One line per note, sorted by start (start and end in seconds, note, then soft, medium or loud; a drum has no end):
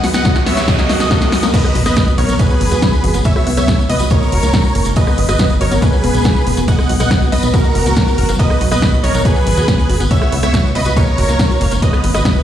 0.00 0.10 B1 medium
0.00 0.08 F#4 medium
0.00 snare loud
0.00 open hi-hat loud
0.00 noise sweep medium
0.00 riser medium
0.14 0.21 B1 medium
0.14 0.21 B3 loud
0.14 0.39 D#5 medium
0.14 0.39 F#5 loud
0.14 0.39 F#5 medium
0.14 snare loud
0.14 closed hi-hat medium
0.14 tambourine medium
0.25 0.29 B3 medium
0.25 kick loud
0.25 snare loud
0.25 closed hi-hat medium
0.25 tambourine medium
0.35 0.42 B1 medium
0.35 0.40 F#4 medium
0.35 snare medium
0.35 closed hi-hat soft
0.35 tambourine soft
0.46 0.53 B1 medium
0.46 0.53 B3 loud
0.46 0.63 C#5 medium
0.46 0.63 E5 medium
0.46 snare loud
0.46 open hi-hat medium
0.57 0.64 B1 medium
0.57 0.61 B3 medium
0.57 snare medium
0.57 closed hi-hat medium
0.57 tambourine medium
0.68 0.72 F#4 medium
0.68 1.45 F#4 medium
0.68 1.45 D#5 loud
0.68 kick loud
0.68 snare loud
0.68 closed hi-hat medium
0.68 tambourine medium
0.79 0.85 A#3 loud
0.79 snare loud
0.79 closed hi-hat soft
0.79 tambourine soft
0.89 0.94 A#3 medium
0.89 snare loud
0.89 open hi-hat loud
1.00 1.07 C#2 medium
1.00 1.04 F#4 medium
1.00 snare medium
1.00 closed hi-hat medium
1.00 tambourine medium
1.11 1.17 A#3 loud
1.11 kick loud
1.11 snare loud
1.11 closed hi-hat medium
1.11 tambourine medium
1.22 1.26 A#3 medium
1.22 snare loud
1.22 closed hi-hat soft
1.22 tambourine soft
1.32 1.39 F#2 loud
1.32 1.37 F#4 medium
1.32 snare loud
1.32 open hi-hat medium
1.43 1.50 C#2 medium
1.43 1.49 A#3 loud
1.43 snare loud
1.43 closed hi-hat medium
1.43 tambourine medium
1.54 1.60 B3 loud
1.54 3.23 B3 medium
1.54 1.78 B4 medium
1.54 1.78 D#5 loud
1.54 kick loud
1.54 closed hi-hat medium
1.54 crash loud
1.54 ride medium
1.54 tambourine medium
1.54 impact medium
1.65 1.69 B3 medium
1.65 cross-stick medium
1.65 tambourine soft
1.75 1.82 B1 medium
1.75 1.79 F#4 medium
1.75 open hi-hat loud
1.75 ride medium
1.86 1.93 B1 medium
1.86 1.92 B3 loud
1.86 2.10 B4 medium
1.86 2.10 D#5 loud
1.86 cross-stick medium
1.86 closed hi-hat medium
1.86 tambourine medium
1.96 2.01 B3 medium
1.96 kick loud
1.96 snare loud
1.96 closed hi-hat medium
1.96 ride medium
1.96 tambourine medium
2.07 2.14 B1 medium
2.07 2.12 F#4 medium
2.07 tambourine soft
2.18 2.25 B1 loud
2.18 2.24 B3 loud
2.18 2.34 A#4 medium
2.18 2.34 C#5 medium
2.18 open hi-hat medium
2.18 ride medium
2.29 2.35 B1 medium
2.29 2.33 B3 medium
2.29 closed hi-hat medium
2.29 tambourine medium
2.39 4.09 G#3 medium
2.39 2.44 F#4 medium
2.39 3.16 G#4 medium
2.39 3.17 B4 loud
2.39 kick loud
2.39 closed hi-hat medium
2.39 ride medium
2.39 tambourine medium
2.50 2.57 B3 loud
2.50 tambourine soft
2.61 2.67 G#1 medium
2.61 2.65 B3 medium
2.61 open hi-hat loud
2.61 ride medium
2.71 2.78 D#2 medium
2.71 2.76 F#4 medium
2.71 closed hi-hat medium
2.71 tambourine medium
2.82 2.89 B3 loud
2.82 kick loud
2.82 snare loud
2.82 closed hi-hat medium
2.82 ride medium
2.82 tambourine medium
2.93 2.97 B3 medium
2.93 tambourine soft
3.04 3.10 G#1 loud
3.04 3.08 F#4 medium
3.04 open hi-hat medium
3.04 ride medium
3.14 3.21 G#1 medium
3.14 3.21 B3 loud
3.14 closed hi-hat medium
3.14 tambourine medium
3.24 3.29 B3 medium
3.24 3.50 C#5 medium
3.24 3.50 E5 loud
3.24 kick loud
3.24 closed hi-hat medium
3.24 ride medium
3.24 tambourine medium
3.36 3.40 F#4 medium
3.36 cross-stick medium
3.36 tambourine soft
3.47 3.53 C#2 loud
3.47 3.53 B3 loud
3.47 open hi-hat loud
3.47 ride medium
3.57 3.64 C#2 medium
3.57 3.62 B3 medium
3.57 3.82 C#5 medium
3.57 3.82 E5 loud
3.57 cross-stick medium
3.57 closed hi-hat medium
3.57 tambourine medium
3.68 3.72 F#4 medium
3.68 kick loud
3.68 cross-stick medium
3.68 snare loud
3.68 closed hi-hat medium
3.68 ride medium
3.68 tambourine medium
3.79 3.85 C#2 medium
3.79 3.85 B3 loud
3.79 tambourine soft
3.89 3.96 C#2 medium
3.89 3.94 B3 medium
3.89 4.06 B4 medium
3.89 4.06 D#5 medium
3.89 open hi-hat loud
3.89 ride medium
3.99 4.07 C#2 medium
3.99 4.04 F#4 medium
3.99 closed hi-hat medium
3.99 tambourine medium
4.10 5.80 A#3 medium
4.10 4.17 A#3 loud
4.10 4.88 A#4 medium
4.10 4.88 C#5 loud
4.10 4.88 C#5 medium
4.10 kick loud
4.10 closed hi-hat medium
4.10 ride medium
4.10 tambourine medium
4.22 4.26 A#3 medium
4.22 tambourine soft
4.32 4.39 F#1 medium
4.32 4.37 F#4 medium
4.32 open hi-hat loud
4.32 ride medium
4.43 4.50 C#2 medium
4.43 4.49 A#3 loud
4.43 closed hi-hat medium
4.43 tambourine medium
4.53 4.58 A#3 medium
4.53 kick loud
4.53 snare loud
4.53 closed hi-hat medium
4.53 ride medium
4.53 tambourine medium
4.64 4.69 F#4 medium
4.64 tambourine soft
4.75 4.82 F#1 medium
4.75 4.82 A#3 loud
4.75 open hi-hat loud
4.75 ride medium
4.85 4.92 F#1 medium
4.85 4.90 A#3 medium
4.85 closed hi-hat medium
4.85 tambourine medium
4.96 6.66 G#3 medium
4.96 7.51 B3 medium
4.96 5.01 F#4 medium
4.96 5.21 B4 medium
4.96 5.21 D#5 loud
4.96 kick loud
4.96 closed hi-hat medium
4.96 ride medium
4.96 tambourine medium
5.07 5.14 B3 loud
5.07 cross-stick medium
5.07 tambourine soft
5.18 5.25 G#1 loud
5.18 5.22 B3 medium
5.18 open hi-hat loud
5.18 ride medium
5.29 5.35 G#1 medium
5.29 5.33 F#4 medium
5.29 5.53 B4 medium
5.29 5.53 D#5 loud
5.29 cross-stick medium
5.29 closed hi-hat medium
5.29 tambourine medium
5.39 5.46 B3 loud
5.39 kick loud
5.39 snare loud
5.39 closed hi-hat medium
5.39 ride medium
5.39 tambourine medium
5.50 5.57 G#1 medium
5.50 5.54 B3 medium
5.50 tambourine soft
5.61 5.67 G#1 loud
5.61 5.65 F#4 medium
5.61 5.77 A#4 medium
5.61 5.77 C#5 medium
5.61 open hi-hat medium
5.61 ride medium
5.71 5.78 G#1 medium
5.71 5.78 B3 loud
5.71 closed hi-hat medium
5.71 tambourine medium
5.82 5.86 B3 medium
5.82 6.59 G#4 medium
5.82 6.59 B4 loud
5.82 kick loud
5.82 closed hi-hat medium
5.82 ride medium
5.82 tambourine medium
5.93 5.97 F#4 medium
5.93 tambourine soft
6.04 6.10 E1 medium
6.04 6.10 B3 loud
6.04 open hi-hat loud
6.04 ride medium
6.14 6.21 B1 medium
6.14 6.19 B3 medium
6.14 closed hi-hat medium
6.14 tambourine medium
6.24 6.29 F#4 medium
6.24 kick loud
6.24 snare loud
6.24 closed hi-hat medium
6.24 ride medium
6.24 tambourine medium
6.36 6.42 B3 loud
6.36 tambourine soft
6.46 6.53 E1 medium
6.46 6.51 B3 medium
6.46 open hi-hat loud
6.46 ride medium
6.57 6.64 E1 medium
6.57 6.62 F#4 medium
6.57 closed hi-hat medium
6.57 tambourine medium
6.68 9.23 F#3 medium
6.68 6.74 B3 loud
6.68 6.92 D#5 medium
6.68 6.92 F#5 medium
6.68 6.92 F#5 loud
6.68 kick loud
6.68 closed hi-hat medium
6.68 ride medium
6.68 tambourine medium
6.78 6.83 B3 medium
6.78 cross-stick medium
6.78 tambourine soft
6.89 6.96 B1 medium
6.89 6.94 F#4 medium
6.89 open hi-hat loud
6.89 ride medium
7.00 7.07 B1 medium
7.00 7.07 B3 loud
7.00 7.25 D#5 medium
7.00 7.25 F#5 loud
7.00 cross-stick medium
7.00 closed hi-hat medium
7.00 tambourine medium
7.11 7.15 B3 medium
7.11 kick loud
7.11 cross-stick medium
7.11 snare loud
7.11 closed hi-hat medium
7.11 ride medium
7.11 tambourine medium
7.22 7.28 B1 medium
7.22 7.26 F#4 medium
7.22 tambourine soft
7.32 7.39 B1 medium
7.32 7.39 B3 loud
7.32 7.49 B4 medium
7.32 7.49 D#5 medium
7.32 snare soft
7.32 open hi-hat medium
7.32 ride medium
7.43 7.50 B1 medium
7.43 7.47 B3 medium
7.43 closed hi-hat medium
7.43 tambourine medium
7.54 8.31 F#4 medium
7.54 7.58 F#4 medium
7.54 8.31 A#4 loud
7.54 kick loud
7.54 closed hi-hat medium
7.54 ride medium
7.54 tambourine medium
7.64 7.71 A#3 loud
7.64 tambourine soft
7.75 7.82 F#1 medium
7.75 7.78 E4 medium
7.75 open hi-hat loud
7.75 ride medium
7.86 7.92 C#2 medium
7.86 7.92 A#3 medium
7.86 closed hi-hat medium
7.86 tambourine medium
7.96 8.01 A#3 medium
7.96 kick loud
7.96 snare loud
7.96 closed hi-hat medium
7.96 ride medium
7.96 tambourine medium
8.07 8.14 A#4 loud
8.07 tambourine soft
8.18 8.25 F#1 medium
8.18 8.22 A#4 loud
8.18 open hi-hat loud
8.18 ride medium
8.29 8.35 F#1 medium
8.29 8.31 A#3 loud
8.29 closed hi-hat medium
8.29 tambourine medium
8.39 8.46 B3 loud
8.39 10.09 B3 medium
8.39 8.64 B4 medium
8.39 8.64 D#5 loud
8.39 kick loud
8.39 closed hi-hat medium
8.39 ride medium
8.39 tambourine medium
8.50 8.54 B3 medium
8.50 cross-stick medium
8.50 tambourine soft
8.61 8.67 B1 loud
8.61 8.65 F#4 medium
8.61 open hi-hat loud
8.61 ride medium
8.71 8.78 B1 medium
8.71 8.78 B3 loud
8.71 8.96 B4 medium
8.71 8.96 D#5 loud
8.71 8.96 D#5 medium
8.71 cross-stick medium
8.71 closed hi-hat medium
8.71 tambourine medium
8.82 8.87 B3 medium
8.82 kick loud
8.82 snare loud
8.82 closed hi-hat medium
8.82 ride medium
8.82 tambourine medium
8.93 9.00 B1 medium
8.93 8.97 F#4 medium
8.93 tambourine soft
9.03 9.10 B1 loud
9.03 9.10 B3 loud
9.03 9.20 A#4 medium
9.03 9.20 C#5 medium
9.03 open hi-hat loud
9.03 ride medium
9.14 9.21 B1 medium
9.14 9.19 B3 medium
9.14 closed hi-hat medium
9.14 tambourine medium
9.25 9.29 F#4 medium
9.25 10.02 G#4 medium
9.25 10.02 B4 loud
9.25 kick loud
9.25 closed hi-hat medium
9.25 ride medium
9.25 tambourine medium
9.36 9.42 B3 loud
9.36 tambourine soft
9.47 9.53 G#1 medium
9.47 9.51 B3 medium
9.47 open hi-hat loud
9.47 ride medium
9.57 9.64 D#2 medium
9.57 9.62 F#4 medium
9.57 closed hi-hat medium
9.57 tambourine medium
9.68 9.74 B3 loud
9.68 kick loud
9.68 snare loud
9.68 closed hi-hat medium
9.68 ride medium
9.68 tambourine medium
9.79 9.83 B3 medium
9.79 tambourine soft
9.89 9.96 G#1 medium
9.89 9.94 F#4 medium
9.89 open hi-hat medium
9.89 ride medium
10.00 10.07 G#1 medium
10.00 10.07 B3 loud
10.00 closed hi-hat medium
10.00 tambourine medium
10.11 10.15 B3 medium
10.11 10.35 C#5 medium
10.11 10.35 E5 loud
10.11 10.35 E5 medium
10.11 kick loud
10.11 closed hi-hat medium
10.11 ride medium
10.11 tambourine medium
10.22 10.26 F#4 medium
10.22 cross-stick medium
10.22 tambourine soft
10.32 10.39 C#2 loud
10.32 10.39 B3 loud
10.32 open hi-hat loud
10.32 ride medium
10.43 10.50 C#2 medium
10.43 10.47 B3 medium
10.43 10.68 C#5 medium
10.43 10.68 E5 loud
10.43 cross-stick medium
10.43 closed hi-hat medium
10.43 tambourine medium
10.54 10.58 F#4 medium
10.54 kick loud
10.54 cross-stick medium
10.54 snare loud
10.54 closed hi-hat medium
10.54 ride medium
10.54 tambourine medium
10.64 10.71 C#2 medium
10.64 10.71 B3 loud
10.64 tambourine soft
10.75 10.82 C#2 loud
10.75 10.79 B3 medium
10.75 10.92 B4 medium
10.75 10.92 D#5 medium
10.75 open hi-hat medium
10.75 ride medium
10.85 10.92 C#2 medium
10.85 10.90 F#4 medium
10.85 closed hi-hat medium
10.85 tambourine medium
10.96 11.03 A#3 loud
10.96 12.43 A#3 medium
10.96 11.74 A#4 medium
10.96 11.74 C#5 loud
10.96 kick loud
10.96 closed hi-hat medium
10.96 ride medium
10.96 tambourine medium
11.07 11.12 A#3 medium
11.07 tambourine soft
11.18 11.25 F#1 loud
11.18 11.22 F#4 medium
11.18 open hi-hat loud
11.18 ride medium
11.29 11.35 C#2 medium
11.29 11.35 A#3 loud
11.29 closed hi-hat medium
11.29 tambourine medium
11.39 11.44 A#3 medium
11.39 kick loud
11.39 snare loud
11.39 closed hi-hat medium
11.39 ride medium
11.39 tambourine medium
11.50 11.54 F#4 medium
11.50 tambourine soft
11.61 11.67 F#1 medium
11.61 11.67 A#3 loud
11.61 open hi-hat medium
11.61 ride medium
11.71 11.78 F#1 medium
11.71 11.76 A#3 medium
11.71 closed hi-hat medium
11.71 tambourine medium
11.82 12.43 G#3 medium
11.82 12.43 B3 medium
11.82 11.87 F#4 medium
11.82 12.07 B4 medium
11.82 12.07 D#5 loud
11.82 kick loud
11.82 closed hi-hat medium
11.82 ride medium
11.82 tambourine medium
11.93 12.00 B3 loud
11.93 cross-stick medium
11.93 tambourine soft
12.04 12.10 G#1 medium
12.04 12.08 B3 medium
12.04 open hi-hat loud
12.04 ride medium
12.14 12.21 G#1 medium
12.14 12.19 F#4 medium
12.14 12.39 B4 medium
12.14 12.39 D#5 loud
12.14 cross-stick medium
12.14 closed hi-hat medium
12.14 tambourine medium
12.25 12.32 B3 loud
12.25 kick loud
12.25 snare loud
12.25 closed hi-hat medium
12.25 ride medium
12.25 tambourine medium
12.36 12.42 G#1 medium
12.36 12.40 B3 medium
12.36 tambourine soft